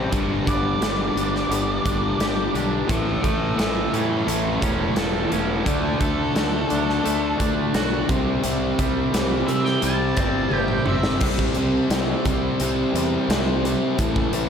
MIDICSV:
0, 0, Header, 1, 6, 480
1, 0, Start_track
1, 0, Tempo, 693401
1, 80, Time_signature, 4, 2, 24, 8
1, 10031, End_track
2, 0, Start_track
2, 0, Title_t, "Lead electric guitar"
2, 0, Program_c, 0, 29
2, 0, Note_on_c, 0, 67, 67
2, 0, Note_on_c, 0, 71, 68
2, 72, Note_off_c, 0, 67, 0
2, 78, Note_off_c, 0, 71, 0
2, 83, Note_on_c, 0, 67, 75
2, 86, Note_on_c, 0, 71, 76
2, 304, Note_off_c, 0, 67, 0
2, 316, Note_off_c, 0, 71, 0
2, 329, Note_on_c, 0, 74, 96
2, 1737, Note_off_c, 0, 74, 0
2, 1993, Note_on_c, 0, 73, 74
2, 1999, Note_on_c, 0, 76, 86
2, 2219, Note_off_c, 0, 73, 0
2, 2225, Note_off_c, 0, 76, 0
2, 2227, Note_on_c, 0, 73, 76
2, 2234, Note_on_c, 0, 76, 84
2, 2456, Note_off_c, 0, 73, 0
2, 2469, Note_off_c, 0, 76, 0
2, 2479, Note_on_c, 0, 73, 73
2, 2483, Note_on_c, 0, 76, 91
2, 2702, Note_off_c, 0, 73, 0
2, 2714, Note_off_c, 0, 76, 0
2, 2721, Note_on_c, 0, 69, 74
2, 2728, Note_on_c, 0, 72, 88
2, 2943, Note_off_c, 0, 69, 0
2, 2954, Note_off_c, 0, 72, 0
2, 2962, Note_on_c, 0, 69, 70
2, 2965, Note_on_c, 0, 72, 74
2, 3184, Note_off_c, 0, 69, 0
2, 3194, Note_off_c, 0, 72, 0
2, 3203, Note_on_c, 0, 69, 69
2, 3209, Note_on_c, 0, 72, 74
2, 3422, Note_off_c, 0, 69, 0
2, 3428, Note_on_c, 0, 61, 83
2, 3433, Note_on_c, 0, 69, 78
2, 3436, Note_off_c, 0, 72, 0
2, 3657, Note_off_c, 0, 61, 0
2, 3667, Note_off_c, 0, 69, 0
2, 3675, Note_on_c, 0, 61, 77
2, 3681, Note_on_c, 0, 69, 79
2, 3900, Note_off_c, 0, 61, 0
2, 3912, Note_off_c, 0, 69, 0
2, 3918, Note_on_c, 0, 66, 75
2, 3921, Note_on_c, 0, 69, 83
2, 4142, Note_off_c, 0, 66, 0
2, 4146, Note_off_c, 0, 69, 0
2, 4155, Note_on_c, 0, 69, 99
2, 5089, Note_off_c, 0, 69, 0
2, 6556, Note_on_c, 0, 76, 96
2, 6676, Note_off_c, 0, 76, 0
2, 6676, Note_on_c, 0, 79, 91
2, 6793, Note_off_c, 0, 79, 0
2, 6802, Note_on_c, 0, 81, 94
2, 7314, Note_off_c, 0, 81, 0
2, 7314, Note_on_c, 0, 79, 94
2, 7498, Note_off_c, 0, 79, 0
2, 7531, Note_on_c, 0, 76, 99
2, 7757, Note_off_c, 0, 76, 0
2, 10031, End_track
3, 0, Start_track
3, 0, Title_t, "Clean electric guitar"
3, 0, Program_c, 1, 27
3, 0, Note_on_c, 1, 55, 65
3, 0, Note_on_c, 1, 67, 69
3, 81, Note_off_c, 1, 67, 0
3, 82, Note_off_c, 1, 55, 0
3, 334, Note_on_c, 1, 59, 65
3, 811, Note_on_c, 1, 62, 68
3, 1034, Note_off_c, 1, 59, 0
3, 1042, Note_on_c, 1, 59, 68
3, 1274, Note_off_c, 1, 62, 0
3, 1283, Note_on_c, 1, 62, 67
3, 1527, Note_on_c, 1, 67, 75
3, 1763, Note_off_c, 1, 62, 0
3, 1771, Note_on_c, 1, 62, 72
3, 2001, Note_off_c, 1, 59, 0
3, 2003, Note_off_c, 1, 67, 0
3, 2005, Note_off_c, 1, 62, 0
3, 2722, Note_on_c, 1, 61, 64
3, 3197, Note_off_c, 1, 61, 0
3, 3205, Note_on_c, 1, 61, 63
3, 3450, Note_on_c, 1, 69, 77
3, 3680, Note_off_c, 1, 61, 0
3, 3688, Note_on_c, 1, 61, 77
3, 3923, Note_off_c, 1, 61, 0
3, 3925, Note_off_c, 1, 69, 0
3, 5360, Note_on_c, 1, 66, 76
3, 5599, Note_off_c, 1, 66, 0
3, 6324, Note_on_c, 1, 52, 72
3, 7289, Note_on_c, 1, 67, 74
3, 7520, Note_off_c, 1, 52, 0
3, 7763, Note_off_c, 1, 67, 0
3, 10031, End_track
4, 0, Start_track
4, 0, Title_t, "Overdriven electric guitar"
4, 0, Program_c, 2, 29
4, 0, Note_on_c, 2, 48, 77
4, 0, Note_on_c, 2, 60, 91
4, 69, Note_off_c, 2, 48, 0
4, 74, Note_off_c, 2, 60, 0
4, 84, Note_on_c, 2, 43, 87
4, 86, Note_on_c, 2, 50, 84
4, 90, Note_on_c, 2, 55, 101
4, 309, Note_off_c, 2, 43, 0
4, 314, Note_off_c, 2, 50, 0
4, 318, Note_on_c, 2, 43, 76
4, 319, Note_off_c, 2, 55, 0
4, 323, Note_on_c, 2, 50, 82
4, 327, Note_on_c, 2, 55, 82
4, 557, Note_off_c, 2, 43, 0
4, 561, Note_off_c, 2, 50, 0
4, 565, Note_on_c, 2, 43, 81
4, 567, Note_off_c, 2, 55, 0
4, 569, Note_on_c, 2, 50, 87
4, 575, Note_on_c, 2, 55, 81
4, 795, Note_off_c, 2, 43, 0
4, 802, Note_off_c, 2, 50, 0
4, 803, Note_on_c, 2, 43, 78
4, 805, Note_off_c, 2, 55, 0
4, 810, Note_on_c, 2, 50, 79
4, 814, Note_on_c, 2, 55, 92
4, 1033, Note_off_c, 2, 43, 0
4, 1038, Note_off_c, 2, 50, 0
4, 1040, Note_off_c, 2, 55, 0
4, 1042, Note_on_c, 2, 43, 90
4, 1047, Note_on_c, 2, 50, 90
4, 1049, Note_on_c, 2, 55, 105
4, 1274, Note_off_c, 2, 43, 0
4, 1278, Note_off_c, 2, 50, 0
4, 1283, Note_on_c, 2, 43, 71
4, 1286, Note_off_c, 2, 55, 0
4, 1287, Note_on_c, 2, 50, 80
4, 1295, Note_on_c, 2, 55, 88
4, 1518, Note_off_c, 2, 43, 0
4, 1519, Note_off_c, 2, 50, 0
4, 1525, Note_off_c, 2, 55, 0
4, 1526, Note_on_c, 2, 43, 84
4, 1528, Note_on_c, 2, 50, 81
4, 1533, Note_on_c, 2, 55, 81
4, 1750, Note_off_c, 2, 43, 0
4, 1753, Note_off_c, 2, 50, 0
4, 1759, Note_on_c, 2, 43, 75
4, 1760, Note_off_c, 2, 55, 0
4, 1762, Note_on_c, 2, 50, 79
4, 1768, Note_on_c, 2, 55, 82
4, 1985, Note_off_c, 2, 43, 0
4, 1986, Note_off_c, 2, 50, 0
4, 1989, Note_off_c, 2, 55, 0
4, 1996, Note_on_c, 2, 45, 90
4, 2005, Note_on_c, 2, 52, 93
4, 2008, Note_on_c, 2, 57, 95
4, 2223, Note_off_c, 2, 45, 0
4, 2231, Note_off_c, 2, 52, 0
4, 2232, Note_on_c, 2, 45, 82
4, 2237, Note_off_c, 2, 57, 0
4, 2239, Note_on_c, 2, 52, 80
4, 2240, Note_on_c, 2, 57, 88
4, 2458, Note_off_c, 2, 45, 0
4, 2465, Note_off_c, 2, 52, 0
4, 2466, Note_on_c, 2, 45, 80
4, 2471, Note_off_c, 2, 57, 0
4, 2473, Note_on_c, 2, 52, 74
4, 2474, Note_on_c, 2, 57, 84
4, 2699, Note_off_c, 2, 45, 0
4, 2705, Note_off_c, 2, 52, 0
4, 2705, Note_off_c, 2, 57, 0
4, 2707, Note_on_c, 2, 45, 79
4, 2713, Note_on_c, 2, 52, 78
4, 2713, Note_on_c, 2, 57, 94
4, 2942, Note_off_c, 2, 45, 0
4, 2949, Note_off_c, 2, 52, 0
4, 2950, Note_on_c, 2, 45, 99
4, 2954, Note_off_c, 2, 57, 0
4, 2958, Note_on_c, 2, 52, 106
4, 2962, Note_on_c, 2, 57, 107
4, 3189, Note_off_c, 2, 45, 0
4, 3192, Note_off_c, 2, 52, 0
4, 3198, Note_on_c, 2, 45, 84
4, 3200, Note_on_c, 2, 52, 82
4, 3202, Note_off_c, 2, 57, 0
4, 3210, Note_on_c, 2, 57, 96
4, 3422, Note_off_c, 2, 45, 0
4, 3425, Note_off_c, 2, 52, 0
4, 3431, Note_on_c, 2, 45, 81
4, 3433, Note_on_c, 2, 52, 89
4, 3437, Note_off_c, 2, 57, 0
4, 3445, Note_on_c, 2, 57, 85
4, 3665, Note_off_c, 2, 45, 0
4, 3670, Note_off_c, 2, 52, 0
4, 3673, Note_off_c, 2, 57, 0
4, 3673, Note_on_c, 2, 45, 77
4, 3678, Note_on_c, 2, 52, 87
4, 3681, Note_on_c, 2, 57, 87
4, 3902, Note_off_c, 2, 45, 0
4, 3904, Note_off_c, 2, 52, 0
4, 3905, Note_off_c, 2, 57, 0
4, 3914, Note_on_c, 2, 50, 88
4, 3920, Note_on_c, 2, 57, 93
4, 3921, Note_on_c, 2, 62, 94
4, 4143, Note_off_c, 2, 50, 0
4, 4145, Note_off_c, 2, 57, 0
4, 4151, Note_on_c, 2, 50, 86
4, 4152, Note_off_c, 2, 62, 0
4, 4153, Note_on_c, 2, 57, 88
4, 4161, Note_on_c, 2, 62, 79
4, 4386, Note_off_c, 2, 50, 0
4, 4395, Note_off_c, 2, 57, 0
4, 4395, Note_on_c, 2, 50, 83
4, 4396, Note_off_c, 2, 62, 0
4, 4403, Note_on_c, 2, 57, 91
4, 4404, Note_on_c, 2, 62, 83
4, 4625, Note_off_c, 2, 50, 0
4, 4627, Note_off_c, 2, 57, 0
4, 4632, Note_off_c, 2, 62, 0
4, 4633, Note_on_c, 2, 50, 78
4, 4635, Note_on_c, 2, 57, 95
4, 4641, Note_on_c, 2, 62, 100
4, 4858, Note_off_c, 2, 50, 0
4, 4862, Note_off_c, 2, 57, 0
4, 4866, Note_on_c, 2, 50, 91
4, 4868, Note_off_c, 2, 62, 0
4, 4870, Note_on_c, 2, 57, 109
4, 4876, Note_on_c, 2, 62, 101
4, 5100, Note_off_c, 2, 50, 0
4, 5103, Note_off_c, 2, 57, 0
4, 5108, Note_off_c, 2, 62, 0
4, 5108, Note_on_c, 2, 50, 90
4, 5111, Note_on_c, 2, 57, 97
4, 5116, Note_on_c, 2, 62, 87
4, 5348, Note_off_c, 2, 50, 0
4, 5356, Note_on_c, 2, 50, 86
4, 5357, Note_off_c, 2, 57, 0
4, 5359, Note_off_c, 2, 62, 0
4, 5365, Note_on_c, 2, 57, 98
4, 5368, Note_on_c, 2, 62, 97
4, 5583, Note_off_c, 2, 50, 0
4, 5587, Note_off_c, 2, 57, 0
4, 5589, Note_off_c, 2, 62, 0
4, 5597, Note_on_c, 2, 48, 101
4, 5601, Note_on_c, 2, 55, 109
4, 5608, Note_on_c, 2, 60, 98
4, 5833, Note_off_c, 2, 48, 0
4, 5837, Note_off_c, 2, 55, 0
4, 5842, Note_off_c, 2, 60, 0
4, 5842, Note_on_c, 2, 48, 85
4, 5845, Note_on_c, 2, 55, 91
4, 5850, Note_on_c, 2, 60, 102
4, 6085, Note_off_c, 2, 55, 0
4, 6086, Note_off_c, 2, 48, 0
4, 6091, Note_off_c, 2, 60, 0
4, 6093, Note_on_c, 2, 55, 76
4, 6094, Note_on_c, 2, 48, 88
4, 6099, Note_on_c, 2, 60, 87
4, 6308, Note_off_c, 2, 48, 0
4, 6317, Note_on_c, 2, 48, 87
4, 6318, Note_off_c, 2, 55, 0
4, 6323, Note_off_c, 2, 60, 0
4, 6327, Note_on_c, 2, 55, 86
4, 6331, Note_on_c, 2, 60, 92
4, 6555, Note_off_c, 2, 48, 0
4, 6558, Note_off_c, 2, 55, 0
4, 6563, Note_on_c, 2, 48, 80
4, 6565, Note_off_c, 2, 60, 0
4, 6567, Note_on_c, 2, 55, 94
4, 6573, Note_on_c, 2, 60, 97
4, 6794, Note_off_c, 2, 48, 0
4, 6803, Note_off_c, 2, 55, 0
4, 6803, Note_on_c, 2, 48, 106
4, 6807, Note_off_c, 2, 60, 0
4, 6811, Note_on_c, 2, 55, 97
4, 6815, Note_on_c, 2, 60, 105
4, 7043, Note_off_c, 2, 48, 0
4, 7051, Note_off_c, 2, 55, 0
4, 7052, Note_on_c, 2, 48, 84
4, 7057, Note_off_c, 2, 60, 0
4, 7060, Note_on_c, 2, 55, 80
4, 7065, Note_on_c, 2, 60, 93
4, 7282, Note_off_c, 2, 48, 0
4, 7285, Note_off_c, 2, 55, 0
4, 7288, Note_off_c, 2, 60, 0
4, 7290, Note_on_c, 2, 48, 82
4, 7294, Note_on_c, 2, 55, 95
4, 7296, Note_on_c, 2, 60, 99
4, 7513, Note_off_c, 2, 48, 0
4, 7517, Note_off_c, 2, 55, 0
4, 7518, Note_off_c, 2, 60, 0
4, 7521, Note_on_c, 2, 48, 84
4, 7525, Note_on_c, 2, 55, 88
4, 7526, Note_on_c, 2, 60, 87
4, 7745, Note_off_c, 2, 48, 0
4, 7747, Note_off_c, 2, 55, 0
4, 7747, Note_off_c, 2, 60, 0
4, 7763, Note_on_c, 2, 48, 86
4, 7768, Note_on_c, 2, 55, 90
4, 7772, Note_on_c, 2, 60, 104
4, 8005, Note_off_c, 2, 48, 0
4, 8007, Note_off_c, 2, 55, 0
4, 8010, Note_off_c, 2, 60, 0
4, 8010, Note_on_c, 2, 55, 78
4, 8013, Note_on_c, 2, 48, 85
4, 8019, Note_on_c, 2, 60, 99
4, 8245, Note_off_c, 2, 48, 0
4, 8251, Note_off_c, 2, 55, 0
4, 8251, Note_off_c, 2, 60, 0
4, 8253, Note_on_c, 2, 48, 81
4, 8254, Note_on_c, 2, 55, 97
4, 8260, Note_on_c, 2, 60, 94
4, 8475, Note_off_c, 2, 48, 0
4, 8483, Note_off_c, 2, 60, 0
4, 8483, Note_on_c, 2, 48, 83
4, 8489, Note_off_c, 2, 55, 0
4, 8491, Note_on_c, 2, 55, 89
4, 8491, Note_on_c, 2, 60, 87
4, 8721, Note_off_c, 2, 48, 0
4, 8728, Note_off_c, 2, 55, 0
4, 8730, Note_on_c, 2, 48, 93
4, 8731, Note_off_c, 2, 60, 0
4, 8736, Note_on_c, 2, 55, 99
4, 8739, Note_on_c, 2, 60, 108
4, 8967, Note_off_c, 2, 48, 0
4, 8972, Note_off_c, 2, 55, 0
4, 8974, Note_off_c, 2, 60, 0
4, 8975, Note_on_c, 2, 48, 87
4, 8981, Note_on_c, 2, 55, 86
4, 8982, Note_on_c, 2, 60, 93
4, 9194, Note_off_c, 2, 48, 0
4, 9203, Note_off_c, 2, 55, 0
4, 9203, Note_on_c, 2, 48, 96
4, 9208, Note_off_c, 2, 60, 0
4, 9212, Note_on_c, 2, 55, 103
4, 9216, Note_on_c, 2, 60, 103
4, 9440, Note_off_c, 2, 48, 0
4, 9442, Note_off_c, 2, 55, 0
4, 9449, Note_on_c, 2, 48, 82
4, 9450, Note_off_c, 2, 60, 0
4, 9450, Note_on_c, 2, 55, 86
4, 9459, Note_on_c, 2, 60, 101
4, 9669, Note_off_c, 2, 48, 0
4, 9670, Note_off_c, 2, 55, 0
4, 9674, Note_off_c, 2, 60, 0
4, 9682, Note_on_c, 2, 45, 85
4, 9686, Note_on_c, 2, 52, 98
4, 9690, Note_on_c, 2, 57, 91
4, 9910, Note_off_c, 2, 45, 0
4, 9915, Note_off_c, 2, 52, 0
4, 9918, Note_on_c, 2, 45, 74
4, 9923, Note_off_c, 2, 57, 0
4, 9923, Note_on_c, 2, 52, 89
4, 9931, Note_on_c, 2, 57, 88
4, 10031, Note_off_c, 2, 45, 0
4, 10031, Note_off_c, 2, 52, 0
4, 10031, Note_off_c, 2, 57, 0
4, 10031, End_track
5, 0, Start_track
5, 0, Title_t, "Fingered electric bass"
5, 0, Program_c, 3, 33
5, 84, Note_on_c, 3, 31, 94
5, 282, Note_off_c, 3, 31, 0
5, 325, Note_on_c, 3, 31, 84
5, 523, Note_off_c, 3, 31, 0
5, 558, Note_on_c, 3, 31, 92
5, 759, Note_off_c, 3, 31, 0
5, 797, Note_on_c, 3, 31, 81
5, 998, Note_off_c, 3, 31, 0
5, 1031, Note_on_c, 3, 31, 83
5, 1235, Note_off_c, 3, 31, 0
5, 1283, Note_on_c, 3, 31, 79
5, 1481, Note_off_c, 3, 31, 0
5, 1517, Note_on_c, 3, 31, 90
5, 1718, Note_off_c, 3, 31, 0
5, 1760, Note_on_c, 3, 35, 84
5, 1960, Note_off_c, 3, 35, 0
5, 2002, Note_on_c, 3, 33, 98
5, 2201, Note_off_c, 3, 33, 0
5, 2240, Note_on_c, 3, 33, 84
5, 2440, Note_off_c, 3, 33, 0
5, 2475, Note_on_c, 3, 33, 88
5, 2676, Note_off_c, 3, 33, 0
5, 2724, Note_on_c, 3, 45, 93
5, 2922, Note_off_c, 3, 45, 0
5, 2957, Note_on_c, 3, 33, 88
5, 3158, Note_off_c, 3, 33, 0
5, 3197, Note_on_c, 3, 28, 84
5, 3398, Note_off_c, 3, 28, 0
5, 3434, Note_on_c, 3, 28, 83
5, 3636, Note_off_c, 3, 28, 0
5, 3679, Note_on_c, 3, 28, 82
5, 3879, Note_off_c, 3, 28, 0
5, 3915, Note_on_c, 3, 38, 94
5, 4116, Note_off_c, 3, 38, 0
5, 4158, Note_on_c, 3, 38, 91
5, 4358, Note_off_c, 3, 38, 0
5, 4401, Note_on_c, 3, 38, 88
5, 4600, Note_off_c, 3, 38, 0
5, 4647, Note_on_c, 3, 38, 85
5, 4843, Note_off_c, 3, 38, 0
5, 4888, Note_on_c, 3, 38, 87
5, 5084, Note_off_c, 3, 38, 0
5, 5120, Note_on_c, 3, 38, 85
5, 5319, Note_off_c, 3, 38, 0
5, 5360, Note_on_c, 3, 35, 86
5, 5559, Note_off_c, 3, 35, 0
5, 5603, Note_on_c, 3, 36, 91
5, 5801, Note_off_c, 3, 36, 0
5, 5842, Note_on_c, 3, 36, 91
5, 6040, Note_off_c, 3, 36, 0
5, 6081, Note_on_c, 3, 36, 86
5, 6280, Note_off_c, 3, 36, 0
5, 6325, Note_on_c, 3, 36, 91
5, 6522, Note_off_c, 3, 36, 0
5, 6564, Note_on_c, 3, 48, 92
5, 6761, Note_off_c, 3, 48, 0
5, 6802, Note_on_c, 3, 36, 88
5, 7000, Note_off_c, 3, 36, 0
5, 7042, Note_on_c, 3, 31, 90
5, 7240, Note_off_c, 3, 31, 0
5, 7275, Note_on_c, 3, 31, 86
5, 7476, Note_off_c, 3, 31, 0
5, 7514, Note_on_c, 3, 31, 87
5, 7715, Note_off_c, 3, 31, 0
5, 7761, Note_on_c, 3, 36, 94
5, 7919, Note_off_c, 3, 36, 0
5, 8001, Note_on_c, 3, 36, 83
5, 8159, Note_off_c, 3, 36, 0
5, 8237, Note_on_c, 3, 36, 89
5, 8397, Note_off_c, 3, 36, 0
5, 8481, Note_on_c, 3, 36, 87
5, 8639, Note_off_c, 3, 36, 0
5, 8721, Note_on_c, 3, 36, 87
5, 8879, Note_off_c, 3, 36, 0
5, 8954, Note_on_c, 3, 40, 90
5, 9114, Note_off_c, 3, 40, 0
5, 9195, Note_on_c, 3, 36, 88
5, 9514, Note_off_c, 3, 36, 0
5, 9682, Note_on_c, 3, 33, 99
5, 9840, Note_off_c, 3, 33, 0
5, 9914, Note_on_c, 3, 33, 88
5, 10031, Note_off_c, 3, 33, 0
5, 10031, End_track
6, 0, Start_track
6, 0, Title_t, "Drums"
6, 86, Note_on_c, 9, 42, 82
6, 87, Note_on_c, 9, 36, 105
6, 155, Note_off_c, 9, 42, 0
6, 157, Note_off_c, 9, 36, 0
6, 328, Note_on_c, 9, 36, 85
6, 330, Note_on_c, 9, 42, 64
6, 397, Note_off_c, 9, 36, 0
6, 399, Note_off_c, 9, 42, 0
6, 567, Note_on_c, 9, 42, 89
6, 572, Note_on_c, 9, 38, 105
6, 637, Note_off_c, 9, 42, 0
6, 641, Note_off_c, 9, 38, 0
6, 813, Note_on_c, 9, 42, 71
6, 882, Note_off_c, 9, 42, 0
6, 936, Note_on_c, 9, 38, 31
6, 1005, Note_off_c, 9, 38, 0
6, 1050, Note_on_c, 9, 42, 95
6, 1119, Note_off_c, 9, 42, 0
6, 1285, Note_on_c, 9, 36, 84
6, 1285, Note_on_c, 9, 42, 69
6, 1354, Note_off_c, 9, 36, 0
6, 1354, Note_off_c, 9, 42, 0
6, 1525, Note_on_c, 9, 42, 90
6, 1529, Note_on_c, 9, 38, 106
6, 1594, Note_off_c, 9, 42, 0
6, 1599, Note_off_c, 9, 38, 0
6, 1768, Note_on_c, 9, 42, 72
6, 1837, Note_off_c, 9, 42, 0
6, 2003, Note_on_c, 9, 36, 112
6, 2004, Note_on_c, 9, 42, 93
6, 2072, Note_off_c, 9, 36, 0
6, 2073, Note_off_c, 9, 42, 0
6, 2243, Note_on_c, 9, 36, 86
6, 2243, Note_on_c, 9, 42, 69
6, 2312, Note_off_c, 9, 36, 0
6, 2312, Note_off_c, 9, 42, 0
6, 2485, Note_on_c, 9, 42, 91
6, 2489, Note_on_c, 9, 38, 107
6, 2554, Note_off_c, 9, 42, 0
6, 2558, Note_off_c, 9, 38, 0
6, 2726, Note_on_c, 9, 42, 73
6, 2796, Note_off_c, 9, 42, 0
6, 2965, Note_on_c, 9, 42, 88
6, 3034, Note_off_c, 9, 42, 0
6, 3200, Note_on_c, 9, 36, 88
6, 3201, Note_on_c, 9, 42, 66
6, 3270, Note_off_c, 9, 36, 0
6, 3270, Note_off_c, 9, 42, 0
6, 3435, Note_on_c, 9, 42, 84
6, 3439, Note_on_c, 9, 38, 111
6, 3504, Note_off_c, 9, 42, 0
6, 3508, Note_off_c, 9, 38, 0
6, 3681, Note_on_c, 9, 42, 62
6, 3750, Note_off_c, 9, 42, 0
6, 3920, Note_on_c, 9, 36, 102
6, 3920, Note_on_c, 9, 42, 84
6, 3989, Note_off_c, 9, 36, 0
6, 3989, Note_off_c, 9, 42, 0
6, 4158, Note_on_c, 9, 36, 88
6, 4158, Note_on_c, 9, 42, 59
6, 4227, Note_off_c, 9, 42, 0
6, 4228, Note_off_c, 9, 36, 0
6, 4401, Note_on_c, 9, 42, 85
6, 4405, Note_on_c, 9, 38, 102
6, 4470, Note_off_c, 9, 42, 0
6, 4474, Note_off_c, 9, 38, 0
6, 4640, Note_on_c, 9, 42, 71
6, 4709, Note_off_c, 9, 42, 0
6, 4771, Note_on_c, 9, 38, 32
6, 4840, Note_off_c, 9, 38, 0
6, 4884, Note_on_c, 9, 42, 87
6, 4954, Note_off_c, 9, 42, 0
6, 5122, Note_on_c, 9, 36, 84
6, 5123, Note_on_c, 9, 42, 69
6, 5192, Note_off_c, 9, 36, 0
6, 5192, Note_off_c, 9, 42, 0
6, 5360, Note_on_c, 9, 42, 91
6, 5364, Note_on_c, 9, 38, 102
6, 5429, Note_off_c, 9, 42, 0
6, 5433, Note_off_c, 9, 38, 0
6, 5601, Note_on_c, 9, 42, 76
6, 5602, Note_on_c, 9, 36, 106
6, 5670, Note_off_c, 9, 42, 0
6, 5671, Note_off_c, 9, 36, 0
6, 5839, Note_on_c, 9, 42, 97
6, 5909, Note_off_c, 9, 42, 0
6, 6083, Note_on_c, 9, 42, 67
6, 6084, Note_on_c, 9, 36, 87
6, 6152, Note_off_c, 9, 42, 0
6, 6153, Note_off_c, 9, 36, 0
6, 6327, Note_on_c, 9, 42, 92
6, 6331, Note_on_c, 9, 38, 101
6, 6396, Note_off_c, 9, 42, 0
6, 6400, Note_off_c, 9, 38, 0
6, 6565, Note_on_c, 9, 42, 75
6, 6635, Note_off_c, 9, 42, 0
6, 6682, Note_on_c, 9, 38, 33
6, 6751, Note_off_c, 9, 38, 0
6, 6799, Note_on_c, 9, 42, 92
6, 6869, Note_off_c, 9, 42, 0
6, 7037, Note_on_c, 9, 42, 73
6, 7042, Note_on_c, 9, 36, 84
6, 7106, Note_off_c, 9, 42, 0
6, 7112, Note_off_c, 9, 36, 0
6, 7277, Note_on_c, 9, 48, 57
6, 7347, Note_off_c, 9, 48, 0
6, 7394, Note_on_c, 9, 47, 62
6, 7464, Note_off_c, 9, 47, 0
6, 7515, Note_on_c, 9, 45, 86
6, 7584, Note_off_c, 9, 45, 0
6, 7639, Note_on_c, 9, 38, 93
6, 7708, Note_off_c, 9, 38, 0
6, 7756, Note_on_c, 9, 49, 120
6, 7762, Note_on_c, 9, 36, 109
6, 7825, Note_off_c, 9, 49, 0
6, 7831, Note_off_c, 9, 36, 0
6, 7884, Note_on_c, 9, 36, 83
6, 7953, Note_off_c, 9, 36, 0
6, 7992, Note_on_c, 9, 42, 71
6, 8062, Note_off_c, 9, 42, 0
6, 8241, Note_on_c, 9, 42, 91
6, 8245, Note_on_c, 9, 38, 105
6, 8310, Note_off_c, 9, 42, 0
6, 8314, Note_off_c, 9, 38, 0
6, 8482, Note_on_c, 9, 42, 78
6, 8484, Note_on_c, 9, 36, 91
6, 8551, Note_off_c, 9, 42, 0
6, 8553, Note_off_c, 9, 36, 0
6, 8720, Note_on_c, 9, 42, 96
6, 8789, Note_off_c, 9, 42, 0
6, 8968, Note_on_c, 9, 42, 76
6, 9038, Note_off_c, 9, 42, 0
6, 9207, Note_on_c, 9, 42, 94
6, 9211, Note_on_c, 9, 38, 111
6, 9276, Note_off_c, 9, 42, 0
6, 9280, Note_off_c, 9, 38, 0
6, 9450, Note_on_c, 9, 42, 80
6, 9520, Note_off_c, 9, 42, 0
6, 9682, Note_on_c, 9, 42, 102
6, 9683, Note_on_c, 9, 36, 112
6, 9751, Note_off_c, 9, 42, 0
6, 9752, Note_off_c, 9, 36, 0
6, 9802, Note_on_c, 9, 36, 90
6, 9871, Note_off_c, 9, 36, 0
6, 9919, Note_on_c, 9, 42, 80
6, 9988, Note_off_c, 9, 42, 0
6, 10031, End_track
0, 0, End_of_file